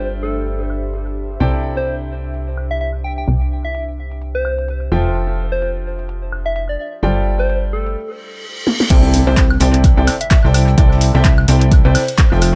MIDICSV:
0, 0, Header, 1, 8, 480
1, 0, Start_track
1, 0, Tempo, 468750
1, 1437, Time_signature, 4, 2, 24, 8
1, 12852, End_track
2, 0, Start_track
2, 0, Title_t, "Soft synth lead"
2, 0, Program_c, 0, 80
2, 233, Note_on_c, 0, 69, 89
2, 612, Note_off_c, 0, 69, 0
2, 1813, Note_on_c, 0, 72, 86
2, 2003, Note_off_c, 0, 72, 0
2, 2773, Note_on_c, 0, 76, 86
2, 2839, Note_off_c, 0, 76, 0
2, 2875, Note_on_c, 0, 76, 76
2, 2964, Note_off_c, 0, 76, 0
2, 3116, Note_on_c, 0, 79, 83
2, 3204, Note_off_c, 0, 79, 0
2, 3255, Note_on_c, 0, 79, 73
2, 3320, Note_off_c, 0, 79, 0
2, 3733, Note_on_c, 0, 76, 90
2, 3923, Note_off_c, 0, 76, 0
2, 4453, Note_on_c, 0, 72, 93
2, 4796, Note_off_c, 0, 72, 0
2, 5652, Note_on_c, 0, 72, 88
2, 5843, Note_off_c, 0, 72, 0
2, 6611, Note_on_c, 0, 76, 88
2, 6678, Note_off_c, 0, 76, 0
2, 6715, Note_on_c, 0, 76, 70
2, 6803, Note_off_c, 0, 76, 0
2, 6853, Note_on_c, 0, 74, 84
2, 6919, Note_off_c, 0, 74, 0
2, 6956, Note_on_c, 0, 74, 69
2, 7044, Note_off_c, 0, 74, 0
2, 7572, Note_on_c, 0, 72, 89
2, 7763, Note_off_c, 0, 72, 0
2, 7915, Note_on_c, 0, 69, 90
2, 8293, Note_off_c, 0, 69, 0
2, 9493, Note_on_c, 0, 72, 96
2, 9683, Note_off_c, 0, 72, 0
2, 10453, Note_on_c, 0, 76, 84
2, 10519, Note_off_c, 0, 76, 0
2, 10556, Note_on_c, 0, 76, 75
2, 10644, Note_off_c, 0, 76, 0
2, 10796, Note_on_c, 0, 79, 90
2, 10884, Note_off_c, 0, 79, 0
2, 10933, Note_on_c, 0, 79, 76
2, 10999, Note_off_c, 0, 79, 0
2, 11413, Note_on_c, 0, 76, 93
2, 11603, Note_off_c, 0, 76, 0
2, 12133, Note_on_c, 0, 72, 95
2, 12476, Note_off_c, 0, 72, 0
2, 12852, End_track
3, 0, Start_track
3, 0, Title_t, "Grand piano"
3, 0, Program_c, 1, 0
3, 0, Note_on_c, 1, 55, 68
3, 0, Note_on_c, 1, 65, 65
3, 0, Note_on_c, 1, 69, 62
3, 0, Note_on_c, 1, 72, 62
3, 0, Note_on_c, 1, 74, 66
3, 0, Note_on_c, 1, 79, 80
3, 1411, Note_off_c, 1, 55, 0
3, 1411, Note_off_c, 1, 69, 0
3, 1411, Note_off_c, 1, 72, 0
3, 1411, Note_off_c, 1, 74, 0
3, 1411, Note_off_c, 1, 79, 0
3, 1412, Note_off_c, 1, 65, 0
3, 1436, Note_on_c, 1, 48, 73
3, 1436, Note_on_c, 1, 64, 62
3, 1436, Note_on_c, 1, 69, 65
3, 1436, Note_on_c, 1, 79, 76
3, 1437, Note_on_c, 1, 72, 63
3, 1437, Note_on_c, 1, 74, 64
3, 5011, Note_off_c, 1, 48, 0
3, 5011, Note_off_c, 1, 64, 0
3, 5012, Note_off_c, 1, 69, 0
3, 5012, Note_off_c, 1, 72, 0
3, 5012, Note_off_c, 1, 74, 0
3, 5012, Note_off_c, 1, 79, 0
3, 5035, Note_on_c, 1, 53, 70
3, 5035, Note_on_c, 1, 72, 65
3, 5036, Note_on_c, 1, 65, 64
3, 5036, Note_on_c, 1, 69, 66
3, 5036, Note_on_c, 1, 76, 67
3, 5036, Note_on_c, 1, 79, 81
3, 7171, Note_off_c, 1, 53, 0
3, 7171, Note_off_c, 1, 65, 0
3, 7171, Note_off_c, 1, 69, 0
3, 7171, Note_off_c, 1, 72, 0
3, 7171, Note_off_c, 1, 76, 0
3, 7171, Note_off_c, 1, 79, 0
3, 7196, Note_on_c, 1, 55, 75
3, 7196, Note_on_c, 1, 65, 66
3, 7197, Note_on_c, 1, 69, 67
3, 7197, Note_on_c, 1, 72, 63
3, 7197, Note_on_c, 1, 74, 67
3, 7197, Note_on_c, 1, 79, 81
3, 8156, Note_off_c, 1, 55, 0
3, 8156, Note_off_c, 1, 65, 0
3, 8156, Note_off_c, 1, 72, 0
3, 8156, Note_off_c, 1, 79, 0
3, 8157, Note_off_c, 1, 69, 0
3, 8157, Note_off_c, 1, 74, 0
3, 9115, Note_on_c, 1, 48, 87
3, 9115, Note_on_c, 1, 64, 84
3, 9115, Note_on_c, 1, 69, 79
3, 9115, Note_on_c, 1, 74, 80
3, 9116, Note_on_c, 1, 72, 79
3, 9116, Note_on_c, 1, 79, 98
3, 9460, Note_off_c, 1, 48, 0
3, 9460, Note_off_c, 1, 64, 0
3, 9460, Note_off_c, 1, 69, 0
3, 9460, Note_off_c, 1, 72, 0
3, 9460, Note_off_c, 1, 74, 0
3, 9460, Note_off_c, 1, 79, 0
3, 9494, Note_on_c, 1, 48, 84
3, 9494, Note_on_c, 1, 64, 78
3, 9494, Note_on_c, 1, 69, 76
3, 9494, Note_on_c, 1, 72, 75
3, 9494, Note_on_c, 1, 74, 75
3, 9494, Note_on_c, 1, 79, 96
3, 9641, Note_off_c, 1, 48, 0
3, 9641, Note_off_c, 1, 64, 0
3, 9641, Note_off_c, 1, 69, 0
3, 9641, Note_off_c, 1, 72, 0
3, 9641, Note_off_c, 1, 74, 0
3, 9641, Note_off_c, 1, 79, 0
3, 9834, Note_on_c, 1, 48, 87
3, 9834, Note_on_c, 1, 64, 82
3, 9834, Note_on_c, 1, 69, 81
3, 9834, Note_on_c, 1, 72, 81
3, 9834, Note_on_c, 1, 74, 83
3, 9834, Note_on_c, 1, 79, 101
3, 10179, Note_off_c, 1, 64, 0
3, 10179, Note_off_c, 1, 69, 0
3, 10179, Note_off_c, 1, 74, 0
3, 10179, Note_off_c, 1, 79, 0
3, 10180, Note_off_c, 1, 48, 0
3, 10180, Note_off_c, 1, 72, 0
3, 10213, Note_on_c, 1, 48, 88
3, 10213, Note_on_c, 1, 64, 85
3, 10213, Note_on_c, 1, 69, 84
3, 10213, Note_on_c, 1, 72, 84
3, 10213, Note_on_c, 1, 74, 85
3, 10213, Note_on_c, 1, 79, 100
3, 10360, Note_off_c, 1, 72, 0
3, 10361, Note_off_c, 1, 48, 0
3, 10361, Note_off_c, 1, 64, 0
3, 10361, Note_off_c, 1, 69, 0
3, 10361, Note_off_c, 1, 74, 0
3, 10361, Note_off_c, 1, 79, 0
3, 10693, Note_on_c, 1, 48, 78
3, 10693, Note_on_c, 1, 64, 71
3, 10693, Note_on_c, 1, 72, 74
3, 10693, Note_on_c, 1, 79, 82
3, 10694, Note_on_c, 1, 69, 70
3, 10694, Note_on_c, 1, 74, 72
3, 11011, Note_off_c, 1, 48, 0
3, 11011, Note_off_c, 1, 64, 0
3, 11011, Note_off_c, 1, 72, 0
3, 11011, Note_off_c, 1, 79, 0
3, 11012, Note_off_c, 1, 69, 0
3, 11012, Note_off_c, 1, 74, 0
3, 11036, Note_on_c, 1, 72, 82
3, 11037, Note_on_c, 1, 48, 89
3, 11037, Note_on_c, 1, 64, 81
3, 11037, Note_on_c, 1, 69, 87
3, 11037, Note_on_c, 1, 74, 84
3, 11037, Note_on_c, 1, 79, 97
3, 11381, Note_off_c, 1, 48, 0
3, 11381, Note_off_c, 1, 64, 0
3, 11381, Note_off_c, 1, 69, 0
3, 11381, Note_off_c, 1, 72, 0
3, 11381, Note_off_c, 1, 74, 0
3, 11381, Note_off_c, 1, 79, 0
3, 11414, Note_on_c, 1, 48, 83
3, 11414, Note_on_c, 1, 64, 77
3, 11414, Note_on_c, 1, 69, 78
3, 11414, Note_on_c, 1, 72, 80
3, 11414, Note_on_c, 1, 74, 74
3, 11414, Note_on_c, 1, 79, 95
3, 11561, Note_off_c, 1, 48, 0
3, 11561, Note_off_c, 1, 64, 0
3, 11561, Note_off_c, 1, 69, 0
3, 11561, Note_off_c, 1, 72, 0
3, 11561, Note_off_c, 1, 74, 0
3, 11561, Note_off_c, 1, 79, 0
3, 11757, Note_on_c, 1, 48, 90
3, 11757, Note_on_c, 1, 64, 82
3, 11757, Note_on_c, 1, 69, 87
3, 11757, Note_on_c, 1, 74, 82
3, 11757, Note_on_c, 1, 79, 101
3, 11758, Note_on_c, 1, 72, 83
3, 12101, Note_off_c, 1, 48, 0
3, 12101, Note_off_c, 1, 64, 0
3, 12101, Note_off_c, 1, 69, 0
3, 12101, Note_off_c, 1, 72, 0
3, 12101, Note_off_c, 1, 74, 0
3, 12101, Note_off_c, 1, 79, 0
3, 12133, Note_on_c, 1, 48, 98
3, 12133, Note_on_c, 1, 64, 86
3, 12133, Note_on_c, 1, 69, 85
3, 12133, Note_on_c, 1, 72, 87
3, 12133, Note_on_c, 1, 74, 84
3, 12133, Note_on_c, 1, 79, 103
3, 12281, Note_off_c, 1, 48, 0
3, 12281, Note_off_c, 1, 64, 0
3, 12281, Note_off_c, 1, 69, 0
3, 12281, Note_off_c, 1, 72, 0
3, 12281, Note_off_c, 1, 74, 0
3, 12281, Note_off_c, 1, 79, 0
3, 12614, Note_on_c, 1, 53, 78
3, 12614, Note_on_c, 1, 65, 76
3, 12614, Note_on_c, 1, 69, 72
3, 12614, Note_on_c, 1, 72, 76
3, 12614, Note_on_c, 1, 76, 75
3, 12614, Note_on_c, 1, 79, 85
3, 12852, Note_off_c, 1, 53, 0
3, 12852, Note_off_c, 1, 65, 0
3, 12852, Note_off_c, 1, 69, 0
3, 12852, Note_off_c, 1, 72, 0
3, 12852, Note_off_c, 1, 76, 0
3, 12852, Note_off_c, 1, 79, 0
3, 12852, End_track
4, 0, Start_track
4, 0, Title_t, "Ambient pad"
4, 0, Program_c, 2, 92
4, 0, Note_on_c, 2, 62, 82
4, 0, Note_on_c, 2, 67, 93
4, 0, Note_on_c, 2, 72, 75
4, 0, Note_on_c, 2, 76, 95
4, 8157, Note_off_c, 2, 62, 0
4, 8157, Note_off_c, 2, 67, 0
4, 8157, Note_off_c, 2, 76, 0
4, 8158, Note_off_c, 2, 72, 0
4, 12852, End_track
5, 0, Start_track
5, 0, Title_t, "Analog synth bass"
5, 0, Program_c, 3, 38
5, 0, Note_on_c, 3, 31, 86
5, 1415, Note_off_c, 3, 31, 0
5, 1437, Note_on_c, 3, 36, 82
5, 3336, Note_off_c, 3, 36, 0
5, 3356, Note_on_c, 3, 36, 84
5, 5015, Note_off_c, 3, 36, 0
5, 5036, Note_on_c, 3, 29, 84
5, 6935, Note_off_c, 3, 29, 0
5, 7196, Note_on_c, 3, 31, 87
5, 8156, Note_off_c, 3, 31, 0
5, 9116, Note_on_c, 3, 36, 98
5, 9466, Note_off_c, 3, 36, 0
5, 9494, Note_on_c, 3, 36, 90
5, 9816, Note_off_c, 3, 36, 0
5, 9836, Note_on_c, 3, 36, 91
5, 10186, Note_off_c, 3, 36, 0
5, 10213, Note_on_c, 3, 36, 94
5, 10333, Note_off_c, 3, 36, 0
5, 10694, Note_on_c, 3, 36, 94
5, 11016, Note_off_c, 3, 36, 0
5, 11036, Note_on_c, 3, 36, 96
5, 11386, Note_off_c, 3, 36, 0
5, 11414, Note_on_c, 3, 36, 93
5, 11736, Note_off_c, 3, 36, 0
5, 11757, Note_on_c, 3, 36, 95
5, 12106, Note_off_c, 3, 36, 0
5, 12134, Note_on_c, 3, 36, 97
5, 12253, Note_off_c, 3, 36, 0
5, 12614, Note_on_c, 3, 29, 97
5, 12852, Note_off_c, 3, 29, 0
5, 12852, End_track
6, 0, Start_track
6, 0, Title_t, "Impact"
6, 0, Program_c, 4, 103
6, 9116, Note_on_c, 4, 60, 75
6, 11036, Note_off_c, 4, 60, 0
6, 12852, End_track
7, 0, Start_track
7, 0, Title_t, "Reverse cymbal"
7, 0, Program_c, 5, 119
7, 8156, Note_on_c, 5, 60, 68
7, 9116, Note_off_c, 5, 60, 0
7, 12852, End_track
8, 0, Start_track
8, 0, Title_t, "Drums"
8, 0, Note_on_c, 9, 42, 68
8, 98, Note_off_c, 9, 42, 0
8, 373, Note_on_c, 9, 42, 42
8, 475, Note_off_c, 9, 42, 0
8, 475, Note_on_c, 9, 42, 73
8, 578, Note_off_c, 9, 42, 0
8, 716, Note_on_c, 9, 76, 52
8, 818, Note_off_c, 9, 76, 0
8, 854, Note_on_c, 9, 42, 49
8, 956, Note_off_c, 9, 42, 0
8, 957, Note_on_c, 9, 42, 69
8, 1059, Note_off_c, 9, 42, 0
8, 1094, Note_on_c, 9, 42, 31
8, 1196, Note_off_c, 9, 42, 0
8, 1436, Note_on_c, 9, 42, 68
8, 1539, Note_off_c, 9, 42, 0
8, 1917, Note_on_c, 9, 42, 70
8, 2019, Note_off_c, 9, 42, 0
8, 2294, Note_on_c, 9, 42, 46
8, 2397, Note_off_c, 9, 42, 0
8, 2397, Note_on_c, 9, 42, 70
8, 2499, Note_off_c, 9, 42, 0
8, 2637, Note_on_c, 9, 76, 54
8, 2739, Note_off_c, 9, 76, 0
8, 2774, Note_on_c, 9, 42, 47
8, 2876, Note_off_c, 9, 42, 0
8, 2877, Note_on_c, 9, 42, 69
8, 2979, Note_off_c, 9, 42, 0
8, 3356, Note_on_c, 9, 42, 67
8, 3459, Note_off_c, 9, 42, 0
8, 3836, Note_on_c, 9, 42, 69
8, 3938, Note_off_c, 9, 42, 0
8, 4214, Note_on_c, 9, 42, 45
8, 4316, Note_off_c, 9, 42, 0
8, 4316, Note_on_c, 9, 42, 73
8, 4419, Note_off_c, 9, 42, 0
8, 4556, Note_on_c, 9, 76, 60
8, 4659, Note_off_c, 9, 76, 0
8, 4694, Note_on_c, 9, 42, 51
8, 4796, Note_off_c, 9, 42, 0
8, 4796, Note_on_c, 9, 42, 74
8, 4899, Note_off_c, 9, 42, 0
8, 5276, Note_on_c, 9, 42, 73
8, 5378, Note_off_c, 9, 42, 0
8, 5756, Note_on_c, 9, 42, 74
8, 5858, Note_off_c, 9, 42, 0
8, 6133, Note_on_c, 9, 42, 49
8, 6236, Note_off_c, 9, 42, 0
8, 6236, Note_on_c, 9, 42, 79
8, 6338, Note_off_c, 9, 42, 0
8, 6476, Note_on_c, 9, 76, 62
8, 6579, Note_off_c, 9, 76, 0
8, 6613, Note_on_c, 9, 42, 53
8, 6715, Note_off_c, 9, 42, 0
8, 6716, Note_on_c, 9, 42, 72
8, 6818, Note_off_c, 9, 42, 0
8, 7195, Note_on_c, 9, 42, 77
8, 7297, Note_off_c, 9, 42, 0
8, 7333, Note_on_c, 9, 42, 36
8, 7435, Note_off_c, 9, 42, 0
8, 7675, Note_on_c, 9, 42, 72
8, 7777, Note_off_c, 9, 42, 0
8, 8053, Note_on_c, 9, 42, 49
8, 8155, Note_off_c, 9, 42, 0
8, 8876, Note_on_c, 9, 38, 76
8, 8978, Note_off_c, 9, 38, 0
8, 9013, Note_on_c, 9, 38, 92
8, 9115, Note_off_c, 9, 38, 0
8, 9115, Note_on_c, 9, 42, 90
8, 9116, Note_off_c, 9, 42, 0
8, 9116, Note_on_c, 9, 36, 122
8, 9116, Note_on_c, 9, 42, 84
8, 9116, Note_on_c, 9, 49, 103
8, 9218, Note_off_c, 9, 36, 0
8, 9218, Note_off_c, 9, 42, 0
8, 9218, Note_off_c, 9, 49, 0
8, 9244, Note_on_c, 9, 38, 41
8, 9346, Note_off_c, 9, 38, 0
8, 9355, Note_on_c, 9, 42, 68
8, 9356, Note_on_c, 9, 46, 100
8, 9458, Note_off_c, 9, 42, 0
8, 9459, Note_off_c, 9, 46, 0
8, 9587, Note_on_c, 9, 38, 107
8, 9595, Note_on_c, 9, 42, 86
8, 9596, Note_on_c, 9, 36, 115
8, 9597, Note_off_c, 9, 42, 0
8, 9597, Note_on_c, 9, 42, 84
8, 9598, Note_on_c, 9, 39, 126
8, 9690, Note_off_c, 9, 38, 0
8, 9698, Note_off_c, 9, 36, 0
8, 9699, Note_off_c, 9, 42, 0
8, 9700, Note_off_c, 9, 39, 0
8, 9733, Note_on_c, 9, 76, 87
8, 9831, Note_on_c, 9, 38, 46
8, 9831, Note_on_c, 9, 42, 74
8, 9836, Note_off_c, 9, 76, 0
8, 9837, Note_on_c, 9, 46, 106
8, 9933, Note_off_c, 9, 42, 0
8, 9934, Note_off_c, 9, 38, 0
8, 9939, Note_off_c, 9, 46, 0
8, 9974, Note_on_c, 9, 42, 54
8, 10075, Note_off_c, 9, 42, 0
8, 10075, Note_on_c, 9, 42, 98
8, 10076, Note_on_c, 9, 36, 122
8, 10077, Note_off_c, 9, 42, 0
8, 10077, Note_on_c, 9, 42, 91
8, 10178, Note_off_c, 9, 36, 0
8, 10179, Note_off_c, 9, 42, 0
8, 10313, Note_on_c, 9, 42, 74
8, 10316, Note_on_c, 9, 46, 107
8, 10316, Note_on_c, 9, 76, 84
8, 10325, Note_on_c, 9, 38, 58
8, 10415, Note_off_c, 9, 42, 0
8, 10419, Note_off_c, 9, 46, 0
8, 10419, Note_off_c, 9, 76, 0
8, 10427, Note_off_c, 9, 38, 0
8, 10453, Note_on_c, 9, 42, 61
8, 10555, Note_off_c, 9, 42, 0
8, 10556, Note_on_c, 9, 36, 125
8, 10556, Note_on_c, 9, 42, 85
8, 10557, Note_on_c, 9, 39, 127
8, 10559, Note_on_c, 9, 38, 107
8, 10561, Note_off_c, 9, 42, 0
8, 10561, Note_on_c, 9, 42, 83
8, 10659, Note_off_c, 9, 36, 0
8, 10660, Note_off_c, 9, 39, 0
8, 10662, Note_off_c, 9, 38, 0
8, 10664, Note_off_c, 9, 42, 0
8, 10696, Note_on_c, 9, 38, 47
8, 10797, Note_on_c, 9, 42, 61
8, 10797, Note_on_c, 9, 46, 102
8, 10797, Note_on_c, 9, 76, 58
8, 10798, Note_off_c, 9, 38, 0
8, 10899, Note_off_c, 9, 46, 0
8, 10899, Note_off_c, 9, 76, 0
8, 10900, Note_off_c, 9, 42, 0
8, 10935, Note_on_c, 9, 42, 43
8, 11036, Note_off_c, 9, 42, 0
8, 11036, Note_on_c, 9, 36, 122
8, 11036, Note_on_c, 9, 42, 80
8, 11038, Note_off_c, 9, 42, 0
8, 11038, Note_on_c, 9, 42, 86
8, 11138, Note_off_c, 9, 36, 0
8, 11141, Note_off_c, 9, 42, 0
8, 11172, Note_on_c, 9, 38, 52
8, 11273, Note_on_c, 9, 42, 76
8, 11274, Note_off_c, 9, 38, 0
8, 11276, Note_on_c, 9, 46, 107
8, 11375, Note_off_c, 9, 42, 0
8, 11378, Note_off_c, 9, 46, 0
8, 11422, Note_on_c, 9, 38, 58
8, 11515, Note_off_c, 9, 38, 0
8, 11515, Note_on_c, 9, 38, 120
8, 11516, Note_on_c, 9, 36, 120
8, 11516, Note_on_c, 9, 42, 79
8, 11517, Note_on_c, 9, 39, 117
8, 11520, Note_off_c, 9, 42, 0
8, 11520, Note_on_c, 9, 42, 84
8, 11617, Note_off_c, 9, 38, 0
8, 11619, Note_off_c, 9, 36, 0
8, 11620, Note_off_c, 9, 39, 0
8, 11622, Note_off_c, 9, 42, 0
8, 11654, Note_on_c, 9, 76, 82
8, 11756, Note_on_c, 9, 46, 111
8, 11757, Note_off_c, 9, 76, 0
8, 11761, Note_on_c, 9, 42, 73
8, 11859, Note_off_c, 9, 46, 0
8, 11863, Note_off_c, 9, 42, 0
8, 11894, Note_on_c, 9, 42, 55
8, 11996, Note_off_c, 9, 42, 0
8, 11996, Note_on_c, 9, 36, 126
8, 11997, Note_on_c, 9, 42, 85
8, 12001, Note_off_c, 9, 42, 0
8, 12001, Note_on_c, 9, 42, 85
8, 12099, Note_off_c, 9, 36, 0
8, 12103, Note_off_c, 9, 42, 0
8, 12236, Note_on_c, 9, 46, 114
8, 12236, Note_on_c, 9, 76, 86
8, 12243, Note_off_c, 9, 46, 0
8, 12243, Note_on_c, 9, 46, 76
8, 12338, Note_off_c, 9, 76, 0
8, 12346, Note_off_c, 9, 46, 0
8, 12374, Note_on_c, 9, 42, 57
8, 12475, Note_off_c, 9, 42, 0
8, 12475, Note_on_c, 9, 42, 90
8, 12476, Note_on_c, 9, 36, 127
8, 12476, Note_on_c, 9, 38, 122
8, 12477, Note_off_c, 9, 42, 0
8, 12477, Note_on_c, 9, 42, 79
8, 12478, Note_on_c, 9, 39, 127
8, 12579, Note_off_c, 9, 36, 0
8, 12579, Note_off_c, 9, 38, 0
8, 12579, Note_off_c, 9, 42, 0
8, 12580, Note_off_c, 9, 39, 0
8, 12620, Note_on_c, 9, 38, 45
8, 12711, Note_on_c, 9, 42, 63
8, 12717, Note_on_c, 9, 46, 106
8, 12717, Note_on_c, 9, 76, 57
8, 12722, Note_off_c, 9, 38, 0
8, 12814, Note_off_c, 9, 42, 0
8, 12819, Note_off_c, 9, 46, 0
8, 12819, Note_off_c, 9, 76, 0
8, 12852, End_track
0, 0, End_of_file